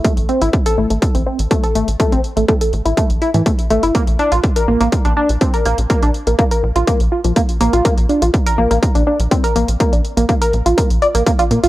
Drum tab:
HH |xxxxxx-xxx-xxxxx|xxxxxxxxxxxxxxxx|xxxxxx-xxx-xxxxx|xxxxxx-xxx-xxxxx|
BD |o---o---o---o---|o---o---o---o---|o---o---o---o---|o---o---o---o---|

HH |xxxxxx-xxx-xxxxx|xxxxxxxxxxxxxxxx|
BD |o---o---o---o---|o---o---o---o---|